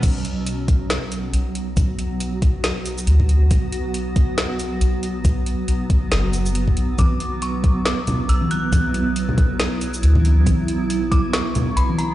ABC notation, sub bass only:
X:1
M:4/4
L:1/8
Q:"Swing 16ths" 1/4=138
K:Bm
V:1 name="Sub bass" clef=bass
B,,,6 B,,,2 | B,,,6 D,,2 | B,,,6 B,,,2 | z2 B,,,2 F,,,3 B,,, |
B,,,6 B,,,2 | B,,,6 D,,2 | B,,,6 B,,,2 |]